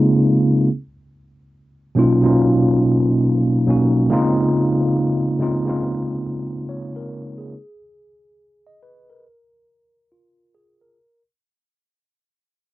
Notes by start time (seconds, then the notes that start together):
Already playing: C#3 G#3 A#3 C4 D#4 F4 G#4
1.95 B2 F#3 A#3 C#4 D#4 F4
2.22 B2 F#3 A#3 C#4 D#4 F4
3.67 B2 F#3 A#3 C#4 D#4 F#4
4.10 C#3 G#3 A#3 C4 D#4 F4
5.39 C#3 G#3 A#3 C4 D#4 F4
5.65 C#3 G#3 A#3 C4 D#4 F4
6.69 C#5
6.96 A#4
7.38 G#4
8.67 D#5
8.83 B4
9.10 A#4
10.12 F4
10.55 G#4
10.81 A#4